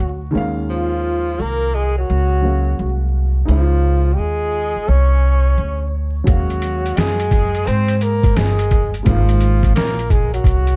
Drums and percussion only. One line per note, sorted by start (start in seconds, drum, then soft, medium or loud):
6.27 kick loud
6.27 closed hi-hat medium
6.50 closed hi-hat medium
6.62 closed hi-hat medium
6.86 closed hi-hat medium
6.97 snare loud
6.97 closed hi-hat medium
7.20 closed hi-hat medium
7.31 kick medium
7.31 snare soft
7.31 closed hi-hat medium
7.55 closed hi-hat soft
7.67 closed hi-hat medium
7.88 closed hi-hat medium
8.01 closed hi-hat medium
8.24 kick medium
8.24 closed hi-hat medium
8.37 snare loud
8.37 closed hi-hat medium
8.59 closed hi-hat medium
8.71 kick medium
8.71 closed hi-hat medium
8.94 closed hi-hat soft
9.06 kick loud
9.06 closed hi-hat medium
9.29 closed hi-hat medium
9.41 closed hi-hat medium
9.63 kick medium
9.63 closed hi-hat medium
9.76 snare loud
9.76 closed hi-hat medium
9.99 closed hi-hat medium
10.10 kick medium
10.10 closed hi-hat medium
10.34 closed hi-hat soft
10.44 kick medium
10.44 closed hi-hat medium
10.67 closed hi-hat medium